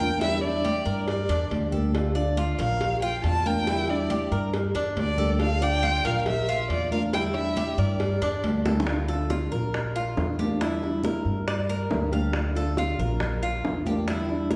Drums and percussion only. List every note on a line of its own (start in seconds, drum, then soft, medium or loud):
0.00 high conga medium
0.22 cowbell loud
0.22 high conga soft
0.44 high conga soft
0.65 cowbell medium
0.65 high conga loud
0.87 high conga soft
1.08 cowbell loud
1.08 high conga soft
1.30 cowbell medium
1.30 high conga soft
1.51 cowbell medium
1.51 high conga medium
1.73 high conga medium
1.95 cowbell loud
1.95 high conga soft
2.16 high conga soft
2.37 cowbell medium
2.37 high conga medium
2.59 cowbell medium
2.59 high conga soft
2.59 low conga medium
2.81 cowbell loud
2.81 high conga soft
2.81 low conga medium
3.02 high conga soft
3.24 cowbell medium
3.24 high conga soft
3.45 high conga medium
3.67 cowbell loud
3.67 high conga soft
3.90 high conga soft
4.10 cowbell medium
4.10 high conga loud
4.32 high conga soft
4.54 cowbell loud
4.54 high conga soft
4.75 cowbell medium
4.75 high conga soft
4.97 cowbell medium
4.97 high conga medium
5.18 high conga medium
5.40 cowbell loud
5.40 high conga soft
5.62 high conga soft
5.83 cowbell medium
5.83 high conga medium
6.05 cowbell medium
6.05 high conga soft
6.05 low conga medium
6.26 cowbell loud
6.26 high conga soft
6.26 low conga medium
6.48 high conga soft
6.70 cowbell medium
6.70 high conga soft
6.92 high conga medium
7.13 cowbell loud
7.13 high conga soft
7.35 high conga soft
7.57 cowbell medium
7.57 high conga loud
8.00 cowbell loud
8.00 high conga soft
8.22 cowbell medium
8.22 high conga soft
8.44 cowbell medium
8.44 high conga medium
8.65 high bongo medium
8.65 high conga medium
8.80 low bongo medium
8.87 high bongo medium
8.87 high conga soft
9.09 high bongo soft
9.09 high conga soft
9.30 high bongo medium
9.30 high conga medium
9.53 high conga soft
9.53 low conga medium
9.74 high bongo medium
9.74 high conga soft
9.96 high bongo soft
9.96 high conga soft
10.17 high bongo soft
10.17 low bongo medium
10.17 high conga soft
10.39 high bongo soft
10.39 high conga medium
10.61 high bongo medium
10.61 high conga soft
10.83 high bongo soft
10.83 high conga soft
11.04 high bongo medium
11.04 high conga loud
11.26 high conga soft
11.47 high bongo medium
11.47 high conga soft
11.69 high bongo soft
11.69 high conga soft
11.91 high bongo soft
11.91 low bongo medium
11.91 high conga medium
12.12 high bongo soft
12.12 high conga medium
12.33 high bongo medium
12.33 high conga soft
12.55 high bongo soft
12.55 high conga soft
12.77 high bongo medium
12.77 high conga medium
12.99 high conga soft
12.99 low conga medium
13.20 high bongo medium
13.20 high conga soft
13.20 low conga medium
13.43 high bongo soft
13.43 high conga soft
13.64 high bongo soft
13.64 low bongo medium
13.64 high conga soft
13.86 high bongo soft
13.86 high conga medium
14.08 high bongo medium
14.08 high conga soft
14.29 high bongo soft
14.29 high conga soft
14.51 high bongo medium
14.51 high conga loud